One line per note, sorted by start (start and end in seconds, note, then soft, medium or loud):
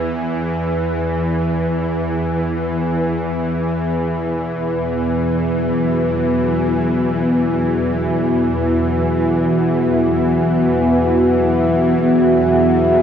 0.00 3.96 E2 medium
0.00 3.97 E3 medium
3.97 13.02 E2 medium
3.97 13.02 E3 medium
3.97 13.02 B3 medium
5.16 13.02 F#4 medium
6.92 13.02 E5 medium
8.42 13.02 F#5 medium